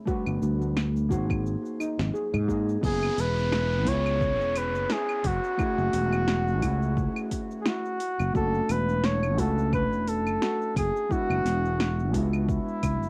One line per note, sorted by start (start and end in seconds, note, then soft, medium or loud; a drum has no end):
0.05 1.08 G3 medium
0.05 1.06 A3 medium
0.05 1.07 D4 medium
0.05 1.07 F#4 medium
0.05 0.39 F#4 medium
0.05 1.08 B4 medium
0.05 kick loud
0.05 cabasa soft
0.26 0.37 G1 medium
0.26 cabasa soft
0.26 claves medium
0.42 1.12 D2 medium
0.42 cabasa medium
0.61 high conga medium
0.61 cabasa soft
0.77 snare medium
0.77 cabasa soft
0.77 claves medium
0.96 cabasa soft
1.09 1.55 G#1 loud
1.09 2.45 A#3 medium
1.09 2.45 D#4 medium
1.09 1.44 F#4 medium
1.09 2.46 F#4 medium
1.09 2.46 G#4 medium
1.09 2.47 C5 medium
1.09 kick medium
1.09 low conga medium
1.09 cabasa medium
1.30 kick medium
1.30 cabasa soft
1.30 claves medium
1.46 cabasa soft
1.65 cabasa soft
1.80 2.13 D#4 medium
1.80 cabasa medium
1.80 claves medium
1.99 2.09 G#1 medium
1.99 snare medium
1.99 high conga medium
1.99 cabasa soft
2.14 2.34 G#4 medium
2.14 cabasa soft
2.34 2.76 G#2 loud
2.34 low conga medium
2.34 cabasa soft
2.34 claves medium
2.48 2.79 A#3 medium
2.48 2.79 D#4 medium
2.48 2.80 F#4 medium
2.48 2.81 G#4 medium
2.48 2.80 G#4 medium
2.48 2.80 D#5 medium
2.48 kick medium
2.48 cabasa medium
2.69 cabasa soft
2.81 3.08 F#1 medium
2.81 3.82 B3 medium
2.81 3.83 C#4 medium
2.81 3.14 E4 medium
2.81 3.83 E4 medium
2.81 3.83 G#4 medium
2.81 3.22 G#4 loud
2.81 3.84 B4 medium
2.81 kick loud
2.81 crash loud
2.81 downlifter medium
2.81 cabasa soft
3.03 cabasa soft
3.03 claves medium
3.17 3.86 E1 medium
3.17 3.90 B4 loud
3.17 open hi-hat medium
3.17 cabasa medium
3.38 cabasa soft
3.52 snare loud
3.52 cabasa soft
3.52 claves medium
3.72 cabasa soft
3.85 4.40 C#2 loud
3.85 5.54 B3 medium
3.85 5.55 C#4 medium
3.85 4.19 E4 medium
3.85 5.55 E4 medium
3.85 5.56 G#4 medium
3.85 4.59 C#5 loud
3.85 5.56 C#5 loud
3.85 kick medium
3.85 open hi-hat medium
3.85 cabasa medium
4.06 cabasa soft
4.06 claves medium
4.21 kick loud
4.21 cabasa soft
4.40 4.75 E1 medium
4.40 cabasa soft
4.56 4.94 B4 loud
4.56 open hi-hat loud
4.56 cabasa medium
4.56 claves medium
4.75 4.85 F#1 loud
4.75 cabasa soft
4.90 5.21 E4 medium
4.90 5.28 G#4 loud
4.90 snare loud
4.90 cabasa soft
5.09 cabasa soft
5.09 claves medium
5.24 5.38 F#1 medium
5.24 7.41 F#4 loud
5.24 kick loud
5.24 open hi-hat medium
5.24 cabasa medium
5.44 cabasa soft
5.57 6.58 A3 medium
5.57 6.58 C#4 medium
5.57 5.90 E4 medium
5.57 6.59 E4 medium
5.57 6.59 F#4 medium
5.57 6.60 G#4 medium
5.57 kick loud
5.57 cabasa soft
5.57 claves medium
5.78 5.89 F#1 medium
5.78 cabasa soft
5.93 6.62 E1 medium
5.93 snare soft
5.93 open hi-hat medium
5.93 cabasa medium
6.13 cabasa soft
6.13 claves medium
6.28 snare loud
6.28 cabasa soft
6.48 cabasa soft
6.61 7.06 C#2 loud
6.61 7.98 A3 medium
6.61 7.98 C#4 medium
6.61 6.95 E4 medium
6.61 7.99 E4 medium
6.61 7.99 F#4 medium
6.61 8.00 G#4 medium
6.61 kick medium
6.61 open hi-hat medium
6.61 cabasa medium
6.61 claves medium
6.82 cabasa soft
6.97 kick loud
6.97 cabasa soft
7.16 cabasa soft
7.16 claves medium
7.31 kick medium
7.31 open hi-hat medium
7.31 cabasa medium
7.51 cabasa soft
7.61 7.69 G#4 medium
7.66 7.97 E4 medium
7.66 8.36 F#4 loud
7.66 snare loud
7.66 cabasa soft
7.66 claves medium
7.85 cabasa soft
8.00 open hi-hat medium
8.00 cabasa medium
8.19 8.30 F#1 medium
8.19 cabasa soft
8.19 claves medium
8.33 8.60 F#1 medium
8.33 9.34 A3 medium
8.33 9.34 C#4 medium
8.33 9.35 D4 medium
8.33 9.35 E4 medium
8.33 8.66 F#4 medium
8.33 9.36 F#4 loud
8.33 8.73 A4 loud
8.33 kick loud
8.33 cabasa medium
8.54 cabasa soft
8.69 9.38 E1 medium
8.69 9.06 B4 loud
8.69 open hi-hat medium
8.69 cabasa medium
8.69 claves medium
8.89 cabasa soft
9.04 9.41 C#5 loud
9.04 snare loud
9.04 cabasa soft
9.23 cabasa soft
9.23 claves medium
9.37 9.92 C#2 loud
9.37 11.06 A3 loud
9.37 11.07 C#4 medium
9.37 11.07 D4 medium
9.37 11.08 E4 medium
9.37 9.71 F#4 medium
9.37 11.08 F#4 loud
9.37 9.73 A4 medium
9.37 kick medium
9.37 open hi-hat medium
9.37 cabasa medium
9.58 cabasa soft
9.73 10.10 B4 loud
9.73 kick loud
9.73 cabasa soft
9.73 claves medium
9.92 10.26 E1 medium
9.92 cabasa soft
10.08 10.77 A4 loud
10.08 open hi-hat medium
10.08 cabasa medium
10.26 10.37 F#1 loud
10.26 cabasa soft
10.26 claves medium
10.42 10.73 F#4 medium
10.42 snare loud
10.42 cabasa soft
10.62 cabasa soft
10.76 10.89 F#1 medium
10.76 11.14 G#4 loud
10.76 kick loud
10.76 open hi-hat medium
10.76 cabasa medium
10.76 claves medium
10.96 cabasa soft
11.09 12.10 G#3 medium
11.09 12.10 B3 medium
11.09 12.11 D4 medium
11.09 11.42 E4 medium
11.09 12.11 E4 medium
11.09 12.23 F#4 loud
11.09 12.12 F#4 medium
11.09 kick loud
11.09 cabasa soft
11.30 11.40 F#1 medium
11.30 cabasa soft
11.30 claves medium
11.45 12.14 E1 medium
11.45 snare soft
11.45 open hi-hat medium
11.45 cabasa medium
11.65 cabasa soft
11.80 snare loud
11.80 cabasa soft
11.80 claves medium
11.99 cabasa soft
12.12 12.58 C#2 loud
12.12 13.09 G#3 medium
12.12 13.09 B3 medium
12.12 13.09 D4 medium
12.12 12.47 E4 medium
12.12 13.09 E4 medium
12.12 13.09 F#4 medium
12.12 kick medium
12.12 open hi-hat medium
12.12 cabasa medium
12.33 cabasa soft
12.33 claves medium
12.49 13.09 E4 medium
12.49 kick loud
12.49 cabasa soft
12.68 cabasa soft
12.83 13.03 C#2 medium
12.83 kick medium
12.83 open hi-hat medium
12.83 cabasa medium
12.83 claves medium
13.03 13.09 F#1 medium
13.03 cabasa soft